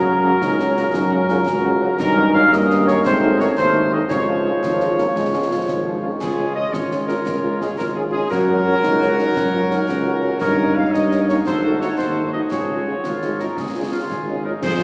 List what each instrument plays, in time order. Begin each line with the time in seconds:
Already playing: tuba F#2, trombone section F#3 C#4, euphonium F#4, woodwind section A#4
0.06 french horn section C#3 F#3 C#4, trumpet section F#4
0.23 french horn section C#3 F#3 C#4, trumpet section F#4
0.42 tuba C#2, euphonium D#4, concert bass drum, snare
0.58 french horn section C#3 F#3 C#4, euphonium C#4, trumpet section F#4, snare
0.75 french horn section C#3 F#3 C#4, euphonium F4, trumpet section F#4, snare
0.94 tuba F#2, euphonium D#4, concert bass drum, snare
1.10 french horn section C#3 F#3 C#4, euphonium C#4, trumpet section F#4
1.29 french horn section C#3 F#3 C#4, euphonium F4, trumpet section F#4, snare
1.47 tuba C#2, euphonium F#4, concert bass drum, snare
1.63 french horn section C#3 F#3 C#4, trumpet section F#4
1.81 french horn section C#3 F#3 C#4, trumpet section F#4
1.99 tuba G2, trombone section D#3 C#4, euphonium D#4, woodwind section A#4, concert bass drum, snare, crash
2.16 french horn section D#3 A#3 C#4, trumpet section D#4
2.34 french horn section D#3 A#3 C#4, trumpet section D#4, woodwind section F5
2.52 tuba G2, euphonium A#3, woodwind section D#5, concert bass drum, snare
2.69 french horn section D#3 A#3 C#4, trumpet section D#4, snare
2.86 french horn section D#3 A#3 C#4, trumpet section D#4, woodwind section C#5, snare
3.05 tuba G#2, trombone section F#3 A3, euphonium C4, woodwind section C5, concert bass drum, snare
3.22 french horn section D#3 A3 D#4, trumpet section F#4
3.39 french horn section D#3 A3 D#4, trumpet section F#4, woodwind section C#5, snare
3.57 tuba D#2, euphonium D#4, woodwind section C5, concert bass drum, snare
3.74 french horn section D#3 A3 D#4, trumpet section F#4
3.92 french horn section D#3 A3 D#4, trumpet section F#4, woodwind section D#5
4.09 tuba C#2, trombone section F3 G#3, euphonium F4, woodwind section C#5, concert bass drum, snare
4.27 french horn section F3 G#3 C#4, trumpet section F4
4.45 french horn section F3 G#3 C#4, trumpet section F4
4.63 tuba G#1, trombone section F3, concert bass drum, snare
4.80 french horn section F3 G#3 C#4, trumpet section F4, snare
4.98 french horn section F3 G#3 C#4, trombone section A#3, trumpet section F4, snare
5.15 tuba C#2, trombone section G#3, concert bass drum, snare
5.33 french horn section F3 G#3 C#4, trumpet section F4
5.50 french horn section F3 G#3 C#4, trombone section F3, trumpet section F4
5.68 tuba G#1, concert bass drum, snare
5.85 french horn section F3 G#3 C#4, trumpet section F4
6.02 trombone section D#3, french horn section F3 G#3 C#4, trumpet section F4
6.20 tuba C#2, woodwind section F4 C#5, euphonium F4, trumpet section G#4, concert bass drum, snare, crash
6.38 french horn section G#3 C#4 F4
6.55 french horn section G#3 C#4 F4, trumpet section D#5
6.73 tuba G#1, euphonium C#4, trumpet section C#5, concert bass drum, snare
6.91 french horn section G#3 C#4 F4, snare
7.07 french horn section G#3 C#4 F4, trumpet section A#4, snare
7.26 tuba C#2, concert bass drum, snare
7.43 french horn section G#3 C#4 F4
7.60 french horn section G#3 C#4 F4, trumpet section G#4, snare
7.77 tuba G#1, euphonium F4, trumpet section A#4, concert bass drum, snare
7.95 french horn section G#3 C#4 F4, trumpet section G#4
8.12 french horn section G#3 C#4 F4, trumpet section G#4
8.31 tuba F#2, euphonium F#4, woodwind section F#4 C#5, trumpet section A#4, concert bass drum, snare
8.49 french horn section F#3 C#4 F#4
8.67 french horn section F#3 C#4 F#4
8.84 tuba C#2, euphonium D#4, concert bass drum, snare
9.01 french horn section F#3 C#4 F#4, euphonium C#4, snare
9.18 french horn section F#3 C#4 F#4, euphonium D#4, snare
9.36 tuba F#2, euphonium C#4, concert bass drum, snare
9.53 french horn section F#3 C#4 F#4, euphonium F4
9.71 french horn section F#3 C#4 F#4, euphonium D#4, snare
9.88 tuba C#2, euphonium C#4, concert bass drum, snare
10.06 french horn section F#3 C#4 F#4
10.23 french horn section F#3 C#4 F#4
10.41 tuba G2, woodwind section D#4 C#5, euphonium D#4, trumpet section A#4, concert bass drum, snare, crash
10.58 french horn section A#3 C#4 D#4
10.76 french horn section A#3 C#4 D#4, trumpet section F5
10.93 tuba G2, trumpet section D#5, concert bass drum, snare
11.11 french horn section A#3 C#4 D#4, snare
11.29 french horn section A#3 C#4 D#4, trumpet section C#5, snare
11.46 tuba G#1, euphonium D#4, woodwind section F#4 A4, trumpet section C5, concert bass drum, snare
11.64 french horn section A3 D#4 F#4
11.81 french horn section A3 D#4 F#4, trumpet section C#5, snare
11.98 tuba D#2, trumpet section C5, concert bass drum, snare
12.16 french horn section A3 D#4 F#4
12.33 french horn section A3 D#4 F#4, trumpet section D#5
12.51 tuba C#2, euphonium F4, woodwind section G#4, trumpet section C#5, concert bass drum, snare
12.69 french horn section G#3 C#4 F4
12.87 french horn section G#3 C#4 F4
13.04 tuba G#1, woodwind section F4, concert bass drum, snare
13.22 french horn section G#3 C#4 F4, snare
13.39 french horn section G#3 C#4 F4, woodwind section A#4, snare
13.57 tuba C#2, woodwind section G#4, concert bass drum, snare
13.75 french horn section G#3 C#4 F4
13.92 french horn section G#3 C#4 F4, woodwind section F4
14.09 tuba G#1, trumpet section G#4, concert bass drum, snare
14.28 french horn section G#3 C#4 F4
14.44 french horn section G#3 C#4 F4, woodwind section D#4, trumpet section A#4
14.62 tuba F2, woodwind section G#4 C5, trumpet section C5, concert bass drum, snare, crash